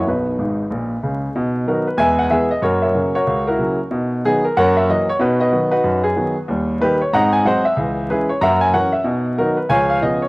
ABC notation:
X:1
M:4/4
L:1/8
Q:"Swing" 1/4=187
K:B
V:1 name="Grand piano"
[DB]6- [DB] z | z2 [DFA] B [Beg] f [GBe] d | [FAc] [Ace]2 [FAc]2 [EFA]2 z | z2 [B,DG] A [Acf] e d c |
[DFB] [FBd]2 [DFB]2 G2 z | z2 [D=GB] c [dfa] ^g [^Bdf] e | z2 [EGB] c [efa] g [Acf] e | z2 [DFA] B [c^eg] e d c |]
V:2 name="Grand piano" clef=bass
[B,,,B,,]2 [G,,,G,,]2 [A,,,A,,]2 [C,,C,]2 | [B,,D]2 [D,F,B,]2 [E,,G,]2 [E,G,B,]2 | [F,,A,]2 [C,F,A,]2 C,,2 [C,F,A,]2 | [B,,D]2 [D,F,]2 [F,,A,]2 [E,F,A,]2 |
B,,2 [D,F,B,]2 F,,2 [D,F,B,]2 | [D,,=G,]2 [D,G,A,]2 [^G,,^B,]2 [F,^G,B,]2 | [C,,E,]2 [E,G,C]2 [F,,A,]2 [E,F,C]2 | [B,,D]2 [D,F,B,]2 [C,,^E,]2 [C,E,B,]2 |]